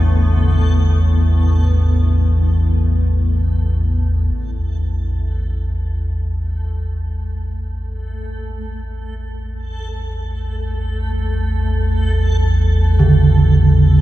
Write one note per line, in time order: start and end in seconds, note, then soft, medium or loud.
0.00 4.34 A1 medium
0.00 4.33 E2 medium
0.00 4.35 A2 medium
0.00 4.35 D3 medium
0.00 1.90 A3 medium
0.00 4.35 A3 medium
0.00 4.34 B3 medium
0.00 4.33 E4 medium
0.00 4.35 A4 medium
4.34 14.01 A1 medium
4.34 14.01 E2 medium
4.34 14.01 A3 medium
4.34 14.01 A4 medium
12.99 14.01 D3 medium